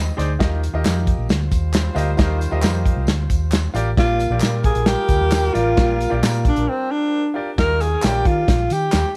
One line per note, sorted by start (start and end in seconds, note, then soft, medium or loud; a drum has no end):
0.00 0.14 G#3 medium
0.00 0.14 D#4 medium
0.00 0.14 C5 medium
0.00 0.16 D#5 medium
0.17 0.36 D2 medium
0.17 0.30 D#4 medium
0.17 0.30 G#4 medium
0.17 0.31 C5 medium
0.17 0.31 D5 medium
0.17 0.38 C6 medium
0.17 snare soft
0.17 closed hi-hat medium
0.17 tambourine soft
0.39 0.67 D#2 loud
0.39 1.03 D#3 medium
0.39 0.59 F4 medium
0.39 0.59 G4 medium
0.39 0.59 A#4 medium
0.39 0.60 D#5 medium
0.39 kick loud
0.39 snare loud
0.39 closed hi-hat medium
0.63 closed hi-hat medium
0.63 tambourine soft
0.73 0.83 D#2 medium
0.73 1.26 F4 medium
0.73 1.26 G4 medium
0.73 1.26 A#4 medium
0.73 1.26 D#5 medium
0.85 1.12 F2 medium
0.85 snare loud
0.85 clap loud
0.85 closed hi-hat medium
0.85 tambourine loud
1.07 kick medium
1.07 closed hi-hat medium
1.07 tambourine soft
1.18 1.27 A#1 medium
1.29 1.47 D2 medium
1.29 3.72 G3 medium
1.29 3.72 F4 medium
1.29 3.72 C5 medium
1.29 snare loud
1.29 closed hi-hat medium
1.29 tambourine medium
1.51 1.88 D#2 medium
1.51 kick medium
1.51 closed hi-hat medium
1.51 tambourine medium
1.73 snare loud
1.73 clap medium
1.73 closed hi-hat medium
1.73 tambourine medium
1.95 2.14 D2 medium
1.95 2.09 F4 medium
1.95 2.09 G4 medium
1.95 2.09 A#4 medium
1.95 2.09 D#5 medium
1.95 closed hi-hat medium
1.95 tambourine soft
2.17 2.47 D#2 medium
2.17 2.82 D#3 medium
2.17 2.38 F4 medium
2.17 2.38 G4 medium
2.17 2.38 A#4 medium
2.17 2.38 D#5 medium
2.17 kick loud
2.17 snare loud
2.17 closed hi-hat medium
2.17 tambourine soft
2.41 closed hi-hat medium
2.41 tambourine soft
2.51 2.61 D#2 medium
2.51 3.04 F4 medium
2.51 3.04 G4 medium
2.51 3.05 A#4 medium
2.51 3.05 D#5 medium
2.62 2.90 F2 medium
2.62 snare loud
2.62 clap loud
2.62 closed hi-hat medium
2.62 tambourine loud
2.86 kick medium
2.86 closed hi-hat medium
2.97 3.06 C2 medium
3.07 3.26 D2 medium
3.07 snare loud
3.07 closed hi-hat medium
3.07 tambourine medium
3.30 3.67 D#2 medium
3.30 kick medium
3.30 closed hi-hat medium
3.30 tambourine medium
3.52 snare loud
3.52 clap medium
3.52 closed hi-hat medium
3.52 tambourine medium
3.74 3.93 A1 medium
3.74 3.88 F4 medium
3.74 3.88 G4 medium
3.74 3.89 A#4 medium
3.74 3.89 D5 loud
3.74 closed hi-hat medium
3.74 tambourine soft
3.97 4.25 A#1 loud
3.97 4.61 A#2 medium
3.97 7.31 G3 medium
3.97 4.17 F4 medium
3.97 7.31 F4 medium
3.97 4.40 F4 loud
3.97 4.18 G4 medium
3.97 7.31 A#4 medium
3.97 4.18 A#4 medium
3.97 4.18 D5 medium
3.97 kick loud
3.97 snare loud
3.97 closed hi-hat medium
3.97 tambourine soft
4.19 closed hi-hat medium
4.19 tambourine soft
4.30 4.40 A#1 medium
4.30 4.84 F4 medium
4.30 4.84 G4 medium
4.30 4.84 A#4 medium
4.30 4.84 D5 medium
4.40 4.69 A#2 medium
4.40 snare loud
4.40 clap loud
4.40 closed hi-hat medium
4.40 tambourine medium
4.63 4.88 G#4 medium
4.63 kick medium
4.63 closed hi-hat medium
4.63 tambourine soft
4.75 4.94 A#1 medium
4.75 closed hi-hat medium
4.86 5.55 G4 loud
4.86 snare loud
4.86 closed hi-hat medium
4.86 tambourine soft
5.09 5.19 D2 medium
5.09 kick medium
5.09 closed hi-hat medium
5.09 tambourine medium
5.21 5.49 D#2 medium
5.31 snare loud
5.31 clap medium
5.31 closed hi-hat medium
5.31 tambourine medium
5.53 5.73 A1 medium
5.53 5.67 F4 medium
5.53 6.22 F4 medium
5.53 5.67 G4 medium
5.53 5.68 A#4 medium
5.53 5.68 D5 medium
5.53 closed hi-hat medium
5.53 tambourine soft
5.76 6.05 A#1 loud
5.76 6.40 A#2 medium
5.76 5.97 F4 medium
5.76 5.97 G4 medium
5.76 5.97 A#4 medium
5.76 5.97 D5 medium
5.76 kick loud
5.76 snare loud
5.76 closed hi-hat medium
5.76 tambourine soft
6.01 closed hi-hat medium
6.01 tambourine soft
6.10 6.21 A#1 medium
6.10 6.63 F4 medium
6.10 6.63 G4 medium
6.10 6.64 A#4 medium
6.10 6.64 D5 medium
6.23 6.50 A#2 medium
6.23 snare loud
6.23 clap loud
6.23 closed hi-hat medium
6.23 tambourine loud
6.34 closed hi-hat soft
6.45 6.70 D4 medium
6.45 kick medium
6.45 closed hi-hat medium
6.45 tambourine soft
6.56 6.66 A#1 medium
6.56 closed hi-hat medium
6.69 6.93 C4 medium
6.91 7.36 D4 medium
7.34 7.48 F4 medium
7.34 7.48 G4 medium
7.34 7.48 A#4 medium
7.34 7.49 D5 medium
7.58 7.94 D#2 medium
7.58 8.22 D#3 medium
7.58 7.84 F4 medium
7.58 7.84 G4 medium
7.58 7.83 A#4 loud
7.58 7.85 A#4 medium
7.58 7.85 D#5 medium
7.58 kick loud
7.58 snare loud
7.58 closed hi-hat medium
7.80 8.05 G#4 medium
7.80 closed hi-hat medium
7.80 tambourine soft
8.02 8.22 A#1 medium
8.02 8.55 F4 medium
8.02 8.55 G4 medium
8.02 8.28 G4 medium
8.02 8.55 A#4 medium
8.02 8.08 C#5 medium
8.02 snare loud
8.02 clap loud
8.02 closed hi-hat medium
8.02 tambourine loud
8.09 8.59 D5 medium
8.25 8.44 D#3 loud
8.25 8.74 F4 medium
8.25 kick medium
8.25 closed hi-hat medium
8.48 8.66 A#1 loud
8.48 kick loud
8.48 snare loud
8.48 closed hi-hat medium
8.48 tambourine medium
8.70 8.89 D#3 medium
8.70 9.16 G4 medium
8.70 closed hi-hat medium
8.70 tambourine medium
8.92 9.02 D#2 medium
8.92 snare loud
8.92 clap medium
8.92 closed hi-hat medium
8.92 tambourine medium